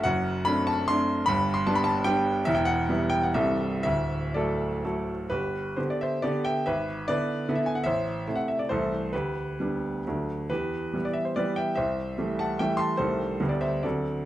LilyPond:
<<
  \new Staff \with { instrumentName = "Grand piano" } { \time 3/4 \key g \major \tempo 4 = 139 fis''4 b''8 a''8 c'''4 | b''8. c'''16 a''16 b''16 a''8 g''4 | e''16 g''16 fis''4 g''16 fis''16 e''4 | e''4 d''4. r8 |
<g' b'>4 c''16 d''16 <c'' e''>8 <b' d''>8 <e'' g''>8 | <b' e''>4 <b' d''>4~ <b' d''>16 e''16 gis''16 fis''16 | <c'' e''>4~ <c'' e''>16 fis''16 e''16 d''16 <a' c''>4 | <g' b'>2~ <g' b'>8 r8 |
<g' b'>4~ <g' b'>16 d''16 e''16 c''16 <b' d''>8 <e'' g''>8 | <c'' e''>4. <fis'' a''>8 <e'' g''>8 <a'' c'''>8 | <a' c''>4~ <a' c''>16 d''16 <c'' e''>8 <a' d''>4 | }
  \new Staff \with { instrumentName = "Grand piano" } { \clef bass \time 3/4 \key g \major <fis,, fis,>4 <a c' d'>4 <a c' d'>4 | <g,, g,>4 <g b d'>4 <g b d'>4 | <e,, e,>4 <g b e'>4 <c,, c, g c' a'>4 | <d,, d,>4 <fis a a'>4 <fis a a'>4 |
g,,4 <d b g'>4 <d b g'>4 | gis,,4 <d b e'>4 <d b e'>4 | a,,4 <c a e'>4 <c, e a e'>4 | d,4 <g b d'>4 <d, fis a d'>4 |
e,4 <e g b>4 <e g b>4 | c,4 <e g a>4 <e g a>4 | <c, ees g a>4 <d, d g b>4 <d, d fis c'>4 | }
>>